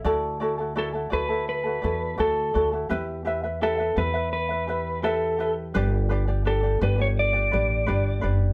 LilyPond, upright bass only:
\new Staff \with { instrumentName = "Upright bass" } { \clef bass \time 4/4 \key d \major \tempo 4 = 84 d,4. d,4 e,8 d,8 d,8 | e,4. e,2~ e,8 | g,,4. g,,4 a,,8 g,,8 fis,,8 | }